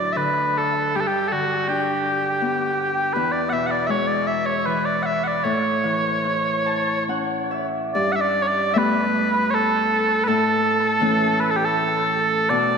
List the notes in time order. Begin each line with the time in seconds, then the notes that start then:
Already playing: D2 A2 F#3 A3 E4 D5
0.13 D3 E5
0.17 B4
0.58 A4
0.95 G2 G4
1.01 A4
1.07 G4
1.28 D3 A4
1.32 F#4
1.68 D4 G4
2.42 B3
3.13 E2 B4
3.32 D5
3.49 B2 E5 F#5
3.67 F#5
3.71 D5
3.87 G#3 C#5 E5
4.07 D5
4.27 E5
4.46 C#5
4.66 E3 B4
4.85 D5
5.03 E5 F#5
5.24 D5 F#5
5.44 A2 C#5
5.84 E3
6.24 E4
6.66 A5
7.08 C#4 F#5
7.51 E5
7.94 G2 D5
8.12 E5 F#5
8.21 D5
8.42 C#5
8.47 D5
8.74 G3 A3 B3 E5
8.78 B4
9.51 A4 C#5
10.24 B4
10.28 A2 A4
11.00 E3 A3 C#4
11.40 B4
11.50 A4
11.56 G4
11.65 A4
12.49 B2 D5